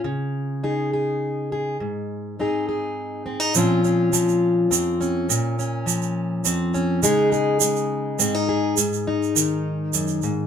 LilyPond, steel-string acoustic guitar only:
\new Staff \with { instrumentName = "Steel-string acoustic guitar" } { \time 3/4 \key bes \minor \tempo 4 = 103 << { r4 <ees' aes'>8 aes'4 aes'8 | r4 <c' ees' aes'>8 aes'4 c'16 ees'16 | <f c' des' f'>8 des'4. c'8 des'8 | r8 des'4. c'8 des'8 |
<aes ees' aes'>8 aes'4. c'16 ees'16 aes'8 | r8 ees'2~ ees'8 | } \\ { des2. | aes,2. | bes,4 f4 f,4 | bes,4 f4 f,4 |
des4 aes4 aes,4 | aes,4 ees4 ges,8 aes,8 | } >> }